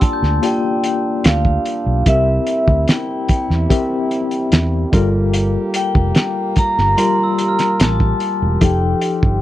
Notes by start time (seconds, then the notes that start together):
Already playing: G3 A#3 D4 F4 G4 D5 C6 E6
0.01 A5, muted fingered electric bass stroke, kick, closed hi-hat
0.13 G6
0.23 D2, snare
0.42 A#3 F4 G4 D5 G5 A5, closed hi-hat
0.84 closed hi-hat
1.24 D2 F5, snare, closed hi-hat
1.45 kick
1.66 closed hi-hat
1.86 B1
2.06 C2 C3 G3 A#3 C4 E4 G4 A#4 E5, kick, closed hi-hat
2.47 closed hi-hat
2.68 D2, kick
2.88 G5, snare, closed hi-hat
3.29 G5, muted fingered electric bass stroke, kick, closed hi-hat
3.50 E2, snare
3.70 C4 G4 A#4 E5, kick, closed hi-hat
4.11 closed hi-hat
4.31 closed hi-hat
4.52 E2, snare, closed hi-hat
4.92 G1 G3 A#3 F4 G4 A4 A#4, kick, closed hi-hat
5.34 closed hi-hat
5.74 G5, closed hi-hat
5.95 F1, kick
6.15 snare, closed hi-hat
6.56 G4 A#5, muted fingered electric bass stroke, kick, closed hi-hat
6.78 G1, snare
6.97 G3 F4 G4 A#4 C6, closed hi-hat
7.24 E6
7.38 closed hi-hat
7.48 F6
7.59 snare, closed hi-hat
7.80 A1 A5, snare, closed hi-hat
8.00 kick
8.20 closed hi-hat
8.42 E1
8.61 F1 F3 D#4 G4 A4 G5, kick, closed hi-hat
9.01 closed hi-hat
9.23 G1, kick